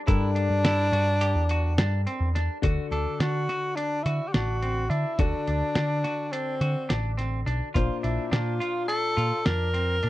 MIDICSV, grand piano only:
0, 0, Header, 1, 2, 480
1, 0, Start_track
1, 0, Tempo, 568182
1, 69, Time_signature, 9, 3, 24, 8
1, 8527, End_track
2, 0, Start_track
2, 0, Title_t, "Grand piano"
2, 0, Program_c, 0, 0
2, 63, Note_on_c, 0, 55, 58
2, 63, Note_on_c, 0, 62, 57
2, 65, Note_on_c, 0, 70, 70
2, 66, Note_on_c, 0, 69, 53
2, 2190, Note_off_c, 0, 62, 0
2, 2191, Note_off_c, 0, 55, 0
2, 2192, Note_off_c, 0, 69, 0
2, 2192, Note_off_c, 0, 70, 0
2, 2214, Note_on_c, 0, 50, 65
2, 2215, Note_on_c, 0, 62, 58
2, 2220, Note_on_c, 0, 66, 55
2, 2222, Note_on_c, 0, 69, 70
2, 4346, Note_off_c, 0, 50, 0
2, 4346, Note_off_c, 0, 62, 0
2, 4349, Note_off_c, 0, 66, 0
2, 4350, Note_off_c, 0, 69, 0
2, 4383, Note_on_c, 0, 50, 56
2, 4384, Note_on_c, 0, 62, 50
2, 4388, Note_on_c, 0, 66, 53
2, 4389, Note_on_c, 0, 69, 58
2, 6511, Note_off_c, 0, 50, 0
2, 6512, Note_off_c, 0, 62, 0
2, 6513, Note_off_c, 0, 66, 0
2, 6514, Note_off_c, 0, 69, 0
2, 6548, Note_on_c, 0, 46, 67
2, 6553, Note_on_c, 0, 62, 59
2, 6554, Note_on_c, 0, 58, 62
2, 6554, Note_on_c, 0, 72, 70
2, 8527, Note_off_c, 0, 46, 0
2, 8527, Note_off_c, 0, 58, 0
2, 8527, Note_off_c, 0, 62, 0
2, 8527, Note_off_c, 0, 72, 0
2, 8527, End_track
0, 0, End_of_file